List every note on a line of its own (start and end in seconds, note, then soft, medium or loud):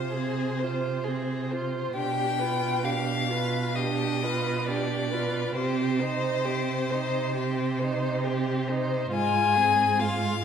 0.00 1.91 C3 soft
0.00 0.15 F4 soft
0.00 0.13 C5 soft
0.00 1.48 C5 medium
0.14 0.64 C4 soft
0.14 0.61 G#4 soft
0.59 1.09 F4 soft
0.59 1.05 C5 soft
1.04 1.53 C4 soft
1.04 1.52 G#4 soft
1.51 1.96 F4 soft
1.51 1.95 C5 soft
1.95 5.52 B2 soft
1.95 2.42 D4 soft
1.95 2.41 G4 soft
1.95 2.86 G5 medium
2.39 2.85 F4 soft
2.39 2.86 B4 soft
2.84 3.31 D4 soft
2.84 3.32 G4 soft
2.84 3.77 F5 medium
3.29 3.75 F4 soft
3.29 3.76 B4 soft
3.75 4.24 D4 soft
3.75 4.24 G4 soft
3.75 4.68 D#5 medium
4.23 4.69 F4 soft
4.23 4.70 B4 soft
4.67 5.15 D4 soft
4.67 5.13 G4 soft
4.67 5.55 D5 medium
5.11 5.56 F4 soft
5.11 5.55 B4 soft
5.55 9.09 C3 medium
5.55 6.02 C4 soft
5.55 6.01 G4 soft
5.55 8.64 C5 medium
6.00 6.48 D#4 soft
6.00 6.46 C5 soft
6.45 6.93 C4 soft
6.45 6.91 G4 soft
6.90 7.36 D#4 soft
6.90 7.34 C5 soft
7.35 7.83 C4 soft
7.35 7.81 G4 soft
7.79 8.28 D#4 soft
7.79 8.26 C5 soft
8.24 8.71 C4 soft
8.24 8.70 G4 soft
8.69 9.13 D#4 soft
8.69 9.11 C5 soft
9.11 10.44 G#2 medium
9.11 9.58 G#3 soft
9.11 9.56 F4 medium
9.11 10.01 G#5 medium
9.54 10.02 C4 soft
9.54 10.01 G#4 soft
9.99 10.44 G#3 soft
9.99 10.44 F4 soft
9.99 10.44 F5 medium